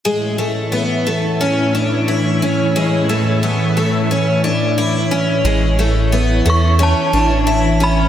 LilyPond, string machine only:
\new Staff \with { instrumentName = "String machine" } { \time 4/4 \key a \major \tempo 4 = 89 <a, e e' cis'' e''>1~ | <a, e e' cis'' e''>1 | <e e' cis''>1 | }